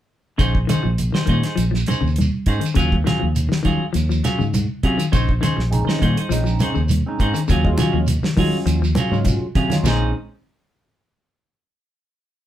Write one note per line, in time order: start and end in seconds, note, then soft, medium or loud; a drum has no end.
0.38 0.65 A#1 medium
0.38 0.59 C#3 medium
0.38 0.57 C#4 medium
0.38 0.57 D#4 medium
0.38 0.57 G#4 medium
0.38 0.58 C5 medium
0.38 kick medium
0.38 closed hi-hat medium
0.38 high conga soft
0.38 shekere medium
0.55 kick medium
0.67 0.78 D#3 medium
0.67 0.87 C#4 medium
0.67 0.87 D#4 medium
0.67 0.88 G#4 medium
0.67 0.88 C5 medium
0.67 closed hi-hat soft
0.67 high conga medium
0.67 shekere medium
0.83 1.10 A#1 medium
0.83 1.04 F3 medium
0.98 closed hi-hat medium
0.98 high conga soft
0.98 shekere medium
1.12 1.23 D#3 medium
1.12 1.27 D#4 soft
1.12 1.28 G#4 soft
1.12 1.28 C5 soft
1.12 snare medium
1.12 shekere soft
1.26 1.42 A#2 medium
1.26 1.47 D#3 medium
1.26 1.44 C#4 medium
1.26 1.44 D#4 medium
1.26 1.44 G#4 medium
1.26 1.43 C5 medium
1.26 kick medium
1.26 closed hi-hat soft
1.26 high conga medium
1.31 shekere soft
1.43 1.62 D#4 soft
1.43 1.62 G#4 soft
1.43 1.61 C5 soft
1.43 snare soft
1.43 closed hi-hat soft
1.56 1.83 A#1 medium
1.56 1.67 F3 medium
1.56 closed hi-hat medium
1.56 high conga soft
1.56 shekere medium
1.71 1.92 F3 medium
1.71 snare soft
1.76 shekere medium
1.86 2.06 C#4 soft
1.86 2.06 D#4 medium
1.86 2.06 G#4 medium
1.86 2.06 C5 medium
1.86 closed hi-hat soft
1.86 high conga medium
1.91 shekere medium
2.01 2.28 D#2 medium
2.01 2.22 C#3 medium
2.07 shekere soft
2.16 closed hi-hat medium
2.16 high conga medium
2.21 shekere medium
2.46 2.60 G#2 medium
2.46 2.65 C#4 medium
2.46 2.66 D#4 medium
2.46 2.66 G#4 medium
2.46 2.66 C5 medium
2.46 kick medium
2.46 closed hi-hat soft
2.51 shekere soft
2.60 2.71 D#3 medium
2.60 closed hi-hat soft
2.65 shekere medium
2.74 3.02 D#2 medium
2.74 2.95 C#3 medium
2.74 2.95 F#3 medium
2.74 2.95 C#4 medium
2.74 2.95 F4 medium
2.74 2.95 G#4 medium
2.74 kick medium
2.74 closed hi-hat medium
2.74 high conga soft
2.79 shekere medium
2.92 kick medium
2.92 high conga medium
3.04 3.15 D#3 medium
3.04 3.24 F#3 medium
3.04 3.25 C#4 medium
3.04 3.25 F4 medium
3.04 3.25 G#4 medium
3.04 snare soft
3.04 closed hi-hat medium
3.04 high conga medium
3.04 shekere medium
3.19 3.48 D#2 medium
3.19 3.40 F3 medium
3.36 closed hi-hat medium
3.36 high conga soft
3.36 shekere medium
3.49 3.59 D#3 medium
3.49 snare medium
3.49 shekere soft
3.63 3.84 D#3 medium
3.63 3.78 D#3 medium
3.63 3.83 F#3 soft
3.63 3.83 C#4 medium
3.63 3.84 F4 medium
3.63 3.84 G#4 medium
3.63 kick medium
3.63 closed hi-hat soft
3.63 high conga medium
3.67 shekere soft
3.93 4.20 D#2 medium
3.93 4.04 F3 medium
3.93 closed hi-hat medium
3.93 high conga soft
3.93 shekere medium
4.09 4.30 F3 medium
4.09 shekere medium
4.24 4.43 F#3 medium
4.24 4.43 C#4 medium
4.24 4.43 F4 medium
4.24 4.43 G#4 medium
4.24 snare soft
4.24 closed hi-hat soft
4.24 high conga medium
4.24 shekere medium
4.39 4.66 G#2 medium
4.39 4.59 C#3 medium
4.39 shekere soft
4.54 closed hi-hat medium
4.54 high conga medium
4.54 shekere medium
4.83 4.97 C3 medium
4.83 5.02 F#3 medium
4.83 5.02 C#4 medium
4.83 5.02 F4 medium
4.83 5.03 G#4 medium
4.83 kick medium
4.83 closed hi-hat soft
4.83 shekere soft
4.98 5.08 D#3 medium
4.98 closed hi-hat soft
4.98 shekere medium
5.12 5.38 A#1 medium
5.12 5.33 C#3 medium
5.12 5.31 C#4 medium
5.12 5.31 D#4 medium
5.12 5.31 C5 medium
5.12 muted clean electric guitar stroke medium
5.12 kick medium
5.12 closed hi-hat medium
5.12 high conga soft
5.12 shekere medium
5.29 kick medium
5.41 5.52 D#3 medium
5.41 5.60 C#4 medium
5.41 5.61 D#4 medium
5.41 5.61 G#4 medium
5.41 5.61 C5 medium
5.41 closed hi-hat medium
5.41 high conga medium
5.41 shekere medium
5.57 5.83 A#1 medium
5.57 muted clean electric guitar stroke medium
5.57 snare soft
5.70 6.06 G#3 medium
5.70 6.06 C4 medium
5.70 6.06 C#4 medium
5.70 6.07 D#4 medium
5.70 closed hi-hat medium
5.70 high conga soft
5.70 shekere medium
5.85 5.95 D#3 medium
5.85 6.00 D#4 soft
5.85 6.01 G#4 soft
5.85 6.02 C5 medium
5.85 snare medium
5.85 shekere soft
5.99 6.15 A#2 medium
5.99 6.20 D#3 medium
5.99 6.17 C#4 medium
5.99 6.17 D#4 medium
5.99 6.17 G#4 medium
5.99 6.16 C5 medium
5.99 kick medium
5.99 closed hi-hat soft
5.99 high conga medium
5.99 shekere soft
6.17 6.35 D#4 soft
6.17 6.35 G#4 soft
6.17 6.34 C5 medium
6.17 closed hi-hat soft
6.29 6.56 A#1 medium
6.29 6.41 F3 medium
6.29 6.74 G#3 medium
6.29 6.74 C4 medium
6.29 6.74 C#4 medium
6.29 6.75 D#4 medium
6.29 closed hi-hat medium
6.29 shekere medium
6.44 6.65 F3 medium
6.44 shekere medium
6.59 6.79 C#4 medium
6.59 6.80 D#4 medium
6.59 6.80 G#4 medium
6.59 6.80 C5 medium
6.59 closed hi-hat soft
6.59 high conga medium
6.59 shekere medium
6.75 7.01 D#2 medium
6.75 6.95 C#3 medium
6.75 shekere soft
6.89 closed hi-hat medium
6.89 high conga medium
6.89 shekere medium
7.06 7.40 G#3 medium
7.06 7.40 C4 medium
7.06 7.40 C#4 medium
7.06 7.41 D#4 medium
7.19 7.33 G#2 medium
7.19 7.38 C#4 medium
7.19 7.39 D#4 medium
7.19 7.39 G#4 medium
7.19 7.39 C5 medium
7.19 kick medium
7.19 closed hi-hat medium
7.19 shekere soft
7.34 7.44 D#3 medium
7.34 closed hi-hat soft
7.34 shekere medium
7.48 7.74 D#2 loud
7.48 7.68 C#3 medium
7.48 7.68 F#3 medium
7.48 7.68 C#4 medium
7.48 7.68 F4 medium
7.48 7.68 G#4 medium
7.48 kick medium
7.48 closed hi-hat medium
7.48 shekere medium
7.64 8.06 F#3 medium
7.64 8.06 G#3 medium
7.64 8.07 C#4 medium
7.64 8.07 F4 medium
7.64 kick medium
7.64 high conga medium
7.78 7.89 D#3 medium
7.78 7.97 F#3 medium
7.78 7.97 C#4 medium
7.78 7.97 F4 medium
7.78 7.98 G#4 medium
7.78 closed hi-hat medium
7.78 high conga loud
7.78 shekere medium
7.93 8.19 D#2 medium
7.93 8.14 F3 medium
8.07 closed hi-hat medium
8.07 high conga soft
8.07 shekere medium
8.22 8.33 D#3 medium
8.22 muted fingered electric bass stroke soft
8.22 snare medium
8.22 shekere soft
8.37 8.57 D#3 medium
8.37 8.51 D#3 medium
8.37 8.81 F#3 medium
8.37 8.56 F#3 medium
8.37 8.81 G#3 medium
8.37 8.56 C#4 medium
8.37 8.81 C#4 medium
8.37 8.56 F4 medium
8.37 8.81 F4 medium
8.37 8.57 G#4 medium
8.37 kick medium
8.37 open hi-hat medium
8.37 high conga medium
8.37 shekere soft
8.66 8.92 D#2 medium
8.66 8.77 F3 medium
8.66 closed hi-hat medium
8.66 high conga soft
8.66 shekere medium
8.82 9.02 F3 medium
8.82 shekere medium
8.95 9.15 F#3 medium
8.95 9.15 C#4 medium
8.95 9.16 F4 medium
8.95 9.16 G#4 medium
8.95 closed hi-hat soft
8.95 high conga loud
8.95 shekere medium
9.11 9.37 G#2 medium
9.11 9.32 C#3 medium
9.11 9.46 F#3 medium
9.11 9.45 G#3 medium
9.11 9.45 C#4 medium
9.11 9.46 F4 medium
9.11 shekere soft
9.25 kick medium
9.25 closed hi-hat medium
9.25 high conga medium
9.25 shekere medium
9.55 9.69 C3 medium
9.55 9.74 F#3 medium
9.55 9.74 C#4 medium
9.55 9.74 F4 medium
9.55 9.74 G#4 medium
9.55 kick medium
9.55 closed hi-hat soft
9.55 low conga medium
9.55 shekere soft
9.70 9.80 D#3 medium
9.70 9.85 F#3 medium
9.70 9.86 G#3 medium
9.70 9.86 C#4 medium
9.70 9.86 F4 medium
9.70 snare soft
9.70 closed hi-hat soft
9.70 low conga loud
9.70 shekere medium
9.83 10.12 A#1 medium
9.83 10.02 A#2 medium
9.83 10.13 C4 medium
9.83 10.09 C#4 medium
9.83 10.14 C#4 medium
9.83 10.10 D#4 medium
9.83 snare medium
9.83 ride bell medium
9.83 low conga medium
9.83 shekere medium
9.87 10.14 G#3 medium
9.87 10.14 D#4 medium
9.87 10.10 G#4 medium
9.87 10.11 C5 medium